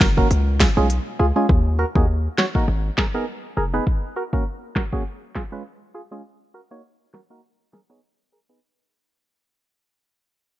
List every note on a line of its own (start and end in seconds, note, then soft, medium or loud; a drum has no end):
0.00 0.23 F#1 medium
0.00 0.07 F#4 medium
0.00 0.07 A#4 loud
0.00 finger snap medium
0.00 kick loud
0.00 snare loud
0.17 0.28 A#3 medium
0.17 0.28 C#4 medium
0.17 0.28 F#4 medium
0.17 0.28 A#4 medium
0.17 kick medium
0.31 0.66 C#2 loud
0.31 closed hi-hat medium
0.60 0.67 F4 medium
0.60 0.67 G#4 loud
0.60 finger snap medium
0.60 kick medium
0.60 snare loud
0.77 1.00 B1 medium
0.77 0.87 G#3 medium
0.77 0.87 C#4 medium
0.77 0.87 F4 medium
0.77 0.87 G#4 medium
0.90 closed hi-hat medium
1.19 1.32 C#2 medium
1.19 1.26 F4 medium
1.19 1.26 G#4 loud
1.36 1.46 G#3 medium
1.36 1.47 C#4 medium
1.36 1.47 F4 medium
1.36 1.47 G#4 medium
1.49 1.85 D#2 loud
1.49 kick loud
1.79 1.85 F#4 medium
1.79 1.86 A#4 loud
1.95 2.28 D#2 medium
1.95 2.06 A#3 medium
1.95 2.06 D#4 medium
1.95 2.06 F#4 medium
1.95 2.06 G#4 medium
1.95 kick medium
2.38 2.45 F#4 medium
2.38 2.45 C#5 loud
2.38 finger snap medium
2.38 snare loud
2.55 2.65 A#3 medium
2.55 2.66 D#4 medium
2.55 2.66 F#4 medium
2.55 2.66 A#4 medium
2.55 kick medium
2.68 2.91 G#1 loud
2.98 3.04 G#4 medium
2.98 3.05 A#4 medium
2.98 finger snap medium
2.98 kick medium
2.98 snare loud
3.14 3.25 B3 medium
3.14 3.25 D#4 medium
3.14 3.25 G#4 medium
3.14 3.25 A#4 medium
3.57 3.80 F1 medium
3.57 3.64 G#4 medium
3.57 3.64 A#4 medium
3.73 3.84 B3 medium
3.73 3.84 D#4 medium
3.73 3.84 G#4 medium
3.73 3.84 B4 medium
3.87 kick loud
4.16 4.23 F#4 medium
4.16 4.23 A#4 loud
4.33 4.44 A#3 medium
4.33 4.44 C#4 medium
4.33 4.44 F#4 medium
4.33 4.44 A#4 medium
4.33 kick medium
4.76 4.83 F#4 medium
4.76 4.83 A#4 loud
4.76 finger snap medium
4.76 kick medium
4.76 snare loud
4.92 5.03 A#3 medium
4.92 5.03 C#4 medium
4.92 5.03 F#4 medium
4.92 5.03 G#4 medium
4.92 kick medium
5.35 5.42 F4 medium
5.35 5.42 G#4 loud
5.35 finger snap medium
5.35 kick medium
5.35 snare loud
5.52 5.63 G#3 medium
5.52 5.63 C#4 medium
5.52 5.63 F4 medium
5.52 5.63 B4 medium
5.94 6.01 F4 medium
5.94 6.01 G#4 loud
6.11 6.22 G#3 medium
6.11 6.22 C#4 medium
6.11 6.22 F4 medium
6.11 6.22 G#4 medium
6.54 6.61 F#4 medium
6.54 6.61 A#4 loud
6.71 6.81 A#3 medium
6.71 6.81 D#4 medium
6.71 6.81 F#4 medium
6.71 6.81 C#5 medium
7.14 7.20 F#4 medium
7.14 7.20 A#4 loud
7.14 finger snap medium
7.14 snare loud
7.30 7.41 A#3 medium
7.30 7.41 D#4 medium
7.30 7.41 F#4 medium
7.30 7.41 A#4 medium
7.73 7.80 G#4 medium
7.73 7.80 A#4 loud
7.73 finger snap medium
7.73 snare loud
7.89 8.00 B3 medium
7.89 8.00 D#4 medium
7.89 8.00 G#4 medium
7.89 8.00 C#5 medium
7.89 cross-stick medium
8.32 8.39 G#4 medium
8.32 8.39 A#4 loud
8.49 8.60 B3 medium
8.49 8.60 D#4 medium
8.49 8.60 G#4 medium
8.49 8.60 B4 medium